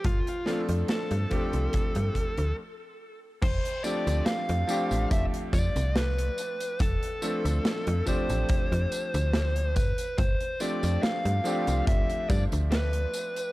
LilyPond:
<<
  \new Staff \with { instrumentName = "Lead electric guitar" } { \time 4/4 \key f \lydian \tempo 4 = 71 f'8 f'8 a'2 r4 | c''8 d''8 f''4 e''8 d''8 b'4 | a'4. c''2 b'8 | c''8 d''8 f''4 e''8 d''8 b'4 | }
  \new Staff \with { instrumentName = "Electric grand piano" } { \time 4/4 \key f \lydian <f a c' d' g'>8 <f a c' d' a'>4 <f a c' d' g'>4. r4 | r8 <f a c' d' g'>4 <f a c' d' g'>2~ <f a c' d' g'>8~ | <f a c' d' g'>8 <f a c' d' a'>4 <f a c' d' g'>2 r8 | r8 <f a c' d' g'>4 <f a c' d' g'>2~ <f a c' d' g'>8 | }
  \new Staff \with { instrumentName = "FM bass" } { \clef bass \time 4/4 \key f \lydian g,,16 r8 f,16 r16 g,16 r16 c,16 r16 g,16 r16 d,16 r4 | f,,16 r8 d,16 r16 f,16 r16 a,,16 f,,16 r16 f,16 c,8. r8 | f,,16 r8 d,16 r16 f,16 r16 a,,16 r16 f,16 r16 d,8. g,16 r16 | g,,16 r8 f,16 r16 g,16 r16 c,16 g,,16 r16 g,16 d,8. r8 | }
  \new DrumStaff \with { instrumentName = "Drums" } \drummode { \time 4/4 <hh bd>16 hh16 <hh sn>16 hh16 <hh sn>16 hh16 <hh bd>16 hh16 <hh bd>16 hh16 <hh bd>16 hh16 r4 | <cymc hh bd tamb>16 hh16 <hh tamb>16 <hh tamb>16 <hh sn tamb>16 hh16 <hh tamb>16 <hh tamb>16 <hh bd tamb>16 hh16 <hh bd tamb>16 <hh tamb>16 <hh sn tamb>16 hh16 <hh tamb>16 <hh tamb>16 | <hh bd tamb>16 hh16 <hh tamb>16 <hh tamb>16 <hh sn tamb>16 hh16 <hh bd tamb>16 <hh tamb>16 <hh bd tamb>16 hh16 <hh tamb>16 <hh tamb>16 <hh sn tamb>16 hh16 <hh bd tamb>16 <hh tamb>16 | <hh bd tamb>16 hh16 <hh tamb>16 <hh tamb>16 <hh sn tamb>16 hh16 <hh tamb>16 <hh tamb>16 <hh bd tamb>16 hh16 <hh bd tamb>16 <hh tamb>16 <hh sn tamb>16 hh16 <hh tamb>16 <hh tamb>16 | }
>>